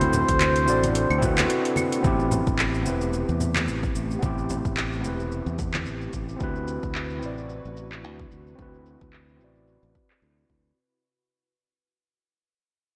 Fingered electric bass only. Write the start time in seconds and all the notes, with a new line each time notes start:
Already playing: D2
0.29 D2
0.68 A1
1.10 D2
2.05 A1
2.47 A1
2.86 E1
3.29 E2
3.68 A1
3.95 A1
4.22 A1
4.65 A1
5.04 E1
5.46 E2
5.86 A1
6.13 A1
6.41 D2
6.83 D2
7.22 A1
7.65 A1
8.04 D2
8.31 D2
8.59 D2
9.01 D2
9.40 A1
9.83 A1
10.22 D2
10.50 D2